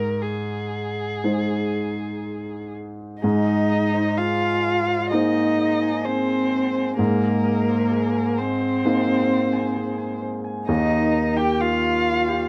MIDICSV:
0, 0, Header, 1, 5, 480
1, 0, Start_track
1, 0, Key_signature, -4, "major"
1, 0, Tempo, 1010101
1, 1067, Tempo, 972447
1, 1555, Time_signature, 4, 2, 24, 8
1, 2027, Tempo, 931677
1, 4427, Tempo, 918836
1, 6327, End_track
2, 0, Start_track
2, 0, Title_t, "Violin"
2, 0, Program_c, 0, 40
2, 0, Note_on_c, 0, 70, 56
2, 103, Note_on_c, 0, 68, 44
2, 110, Note_off_c, 0, 70, 0
2, 1310, Note_off_c, 0, 68, 0
2, 1550, Note_on_c, 0, 75, 58
2, 2019, Note_on_c, 0, 77, 63
2, 2026, Note_off_c, 0, 75, 0
2, 2494, Note_off_c, 0, 77, 0
2, 2497, Note_on_c, 0, 75, 60
2, 2986, Note_on_c, 0, 72, 57
2, 2994, Note_off_c, 0, 75, 0
2, 3463, Note_off_c, 0, 72, 0
2, 3466, Note_on_c, 0, 70, 58
2, 4185, Note_on_c, 0, 72, 59
2, 4192, Note_off_c, 0, 70, 0
2, 5144, Note_off_c, 0, 72, 0
2, 5384, Note_on_c, 0, 75, 66
2, 5742, Note_on_c, 0, 79, 60
2, 5750, Note_off_c, 0, 75, 0
2, 5868, Note_on_c, 0, 77, 71
2, 5876, Note_off_c, 0, 79, 0
2, 6327, Note_off_c, 0, 77, 0
2, 6327, End_track
3, 0, Start_track
3, 0, Title_t, "Harp"
3, 0, Program_c, 1, 46
3, 1549, Note_on_c, 1, 68, 51
3, 1669, Note_on_c, 1, 75, 40
3, 1787, Note_off_c, 1, 75, 0
3, 1793, Note_on_c, 1, 75, 39
3, 1902, Note_on_c, 1, 72, 39
3, 2014, Note_off_c, 1, 68, 0
3, 2020, Note_on_c, 1, 68, 49
3, 2138, Note_on_c, 1, 80, 40
3, 2372, Note_off_c, 1, 72, 0
3, 2379, Note_on_c, 1, 72, 38
3, 2491, Note_off_c, 1, 68, 0
3, 2497, Note_on_c, 1, 68, 52
3, 2615, Note_off_c, 1, 72, 0
3, 2621, Note_on_c, 1, 72, 39
3, 2736, Note_off_c, 1, 72, 0
3, 2742, Note_on_c, 1, 72, 36
3, 2859, Note_off_c, 1, 80, 0
3, 2865, Note_on_c, 1, 80, 40
3, 2976, Note_off_c, 1, 68, 0
3, 2982, Note_on_c, 1, 68, 57
3, 3098, Note_off_c, 1, 80, 0
3, 3105, Note_on_c, 1, 80, 42
3, 3214, Note_off_c, 1, 72, 0
3, 3220, Note_on_c, 1, 72, 41
3, 3337, Note_off_c, 1, 80, 0
3, 3344, Note_on_c, 1, 80, 38
3, 3451, Note_off_c, 1, 68, 0
3, 3458, Note_on_c, 1, 68, 55
3, 3576, Note_off_c, 1, 75, 0
3, 3583, Note_on_c, 1, 75, 41
3, 3693, Note_off_c, 1, 75, 0
3, 3700, Note_on_c, 1, 75, 44
3, 3821, Note_off_c, 1, 72, 0
3, 3827, Note_on_c, 1, 72, 41
3, 3937, Note_off_c, 1, 68, 0
3, 3943, Note_on_c, 1, 68, 54
3, 4059, Note_off_c, 1, 80, 0
3, 4065, Note_on_c, 1, 80, 42
3, 4297, Note_off_c, 1, 72, 0
3, 4303, Note_on_c, 1, 72, 43
3, 4419, Note_off_c, 1, 68, 0
3, 4425, Note_on_c, 1, 68, 58
3, 4540, Note_off_c, 1, 72, 0
3, 4546, Note_on_c, 1, 72, 42
3, 4660, Note_off_c, 1, 72, 0
3, 4667, Note_on_c, 1, 72, 39
3, 4776, Note_off_c, 1, 80, 0
3, 4782, Note_on_c, 1, 80, 43
3, 4897, Note_off_c, 1, 68, 0
3, 4904, Note_on_c, 1, 68, 61
3, 5012, Note_off_c, 1, 80, 0
3, 5018, Note_on_c, 1, 80, 44
3, 5134, Note_off_c, 1, 72, 0
3, 5140, Note_on_c, 1, 72, 43
3, 5254, Note_off_c, 1, 80, 0
3, 5260, Note_on_c, 1, 80, 44
3, 5380, Note_on_c, 1, 63, 63
3, 5403, Note_off_c, 1, 72, 0
3, 5403, Note_off_c, 1, 80, 0
3, 5404, Note_off_c, 1, 68, 0
3, 5495, Note_on_c, 1, 70, 49
3, 5608, Note_off_c, 1, 70, 0
3, 5614, Note_on_c, 1, 70, 49
3, 5727, Note_off_c, 1, 75, 0
3, 5738, Note_on_c, 1, 67, 45
3, 5851, Note_off_c, 1, 63, 0
3, 5857, Note_on_c, 1, 63, 57
3, 6213, Note_off_c, 1, 67, 0
3, 6219, Note_on_c, 1, 67, 48
3, 6327, Note_off_c, 1, 63, 0
3, 6327, Note_off_c, 1, 67, 0
3, 6327, Note_off_c, 1, 70, 0
3, 6327, End_track
4, 0, Start_track
4, 0, Title_t, "Cello"
4, 0, Program_c, 2, 42
4, 1556, Note_on_c, 2, 63, 70
4, 2022, Note_on_c, 2, 65, 70
4, 2029, Note_off_c, 2, 63, 0
4, 2507, Note_on_c, 2, 63, 66
4, 2515, Note_off_c, 2, 65, 0
4, 2991, Note_on_c, 2, 60, 65
4, 2999, Note_off_c, 2, 63, 0
4, 3466, Note_off_c, 2, 60, 0
4, 3469, Note_on_c, 2, 58, 70
4, 4193, Note_on_c, 2, 60, 67
4, 4200, Note_off_c, 2, 58, 0
4, 5148, Note_off_c, 2, 60, 0
4, 5384, Note_on_c, 2, 63, 76
4, 5750, Note_on_c, 2, 67, 73
4, 5758, Note_off_c, 2, 63, 0
4, 5870, Note_on_c, 2, 65, 77
4, 5878, Note_off_c, 2, 67, 0
4, 6327, Note_off_c, 2, 65, 0
4, 6327, End_track
5, 0, Start_track
5, 0, Title_t, "Upright piano"
5, 0, Program_c, 3, 0
5, 0, Control_c, 3, 64, 127
5, 0, Note_on_c, 3, 44, 42
5, 588, Note_on_c, 3, 56, 30
5, 589, Note_on_c, 3, 63, 29
5, 589, Note_on_c, 3, 72, 33
5, 1533, Note_off_c, 3, 44, 0
5, 1535, Note_off_c, 3, 56, 0
5, 1536, Note_off_c, 3, 63, 0
5, 1536, Note_off_c, 3, 72, 0
5, 1556, Note_on_c, 3, 44, 48
5, 1564, Control_c, 3, 64, 0
5, 1636, Control_c, 3, 64, 127
5, 2508, Note_on_c, 3, 58, 36
5, 2510, Note_on_c, 3, 63, 37
5, 2513, Note_on_c, 3, 72, 37
5, 3447, Note_off_c, 3, 44, 0
5, 3447, Note_off_c, 3, 58, 0
5, 3448, Note_off_c, 3, 63, 0
5, 3449, Note_off_c, 3, 72, 0
5, 3468, Note_on_c, 3, 44, 48
5, 3476, Control_c, 3, 64, 0
5, 3570, Control_c, 3, 64, 127
5, 4429, Note_on_c, 3, 58, 40
5, 4430, Note_on_c, 3, 63, 38
5, 4431, Note_on_c, 3, 72, 44
5, 5366, Note_off_c, 3, 44, 0
5, 5367, Note_off_c, 3, 58, 0
5, 5367, Note_off_c, 3, 63, 0
5, 5368, Note_off_c, 3, 72, 0
5, 5386, Note_on_c, 3, 39, 54
5, 5396, Control_c, 3, 64, 0
5, 5466, Control_c, 3, 64, 127
5, 6327, Note_off_c, 3, 39, 0
5, 6327, End_track
0, 0, End_of_file